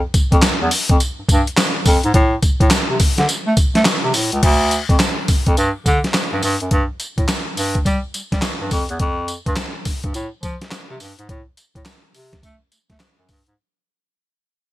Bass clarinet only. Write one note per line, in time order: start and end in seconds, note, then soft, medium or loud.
0.32 0.40 F2 loud
0.44 0.51 E2 soft
0.61 0.69 E2 loud
0.90 0.98 F2 medium
1.19 1.23 G2 soft
1.29 1.42 G2 loud
1.86 1.99 F2 medium
2.04 2.12 G#2 medium
2.14 2.36 A2 loud
2.61 2.69 A2 loud
2.72 2.79 C3 soft
2.90 2.97 C3 medium
3.18 3.26 D3 medium
3.47 3.54 A3 medium
3.75 3.83 A3 loud
4.04 4.12 C3 medium
4.14 4.28 A2 medium
4.33 4.40 C#2 medium
4.43 4.77 D2 loud
4.90 4.97 F2 medium
5.29 5.36 F2 soft
5.47 5.54 F2 medium
5.58 5.71 G2 loud
5.86 5.99 D3 loud
6.33 6.40 G2 loud
6.43 6.57 G2 loud
6.62 6.69 F#2 medium
6.71 6.85 G2 loud
7.18 7.26 A2 medium
7.57 7.78 G2 medium
7.86 7.99 G3 loud
8.15 8.22 G3 medium
8.32 8.40 G3 medium
8.61 8.69 G2 medium
8.72 8.85 F2 loud
8.90 8.98 E2 medium
9.00 9.34 F2 loud
9.47 9.54 G2 loud
9.86 9.93 G2 soft
10.04 10.12 G2 medium
10.15 10.28 A2 loud
10.43 10.57 F3 loud
10.90 10.98 C3 loud
11.01 11.14 G2 medium
11.19 11.26 G#2 medium
11.29 11.42 A2 medium
11.76 11.83 A2 medium
12.15 12.36 C3 loud
12.43 12.56 A3 loud
12.72 12.79 A3 soft
12.90 12.97 A3 loud
13.18 13.26 F#2 medium
13.29 13.42 G2 medium
13.47 13.55 G#2 medium